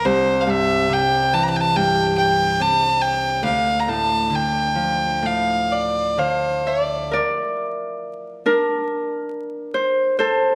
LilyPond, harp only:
<<
  \new Staff \with { instrumentName = "Harp" } { \time 4/4 \key bes \lydian \tempo 4 = 69 r1 | r2. f''8 e''8 | d''4 r8 bes'4. c''8 c''8 | }
  \new Staff \with { instrumentName = "Harp" } { \clef bass \time 4/4 \key bes \lydian c,8 g,8 c8 e8 g,4 c4 | d,8 a,8 d8 f8 a,4 d4 | bes'4. d'2 a'8 | }
>>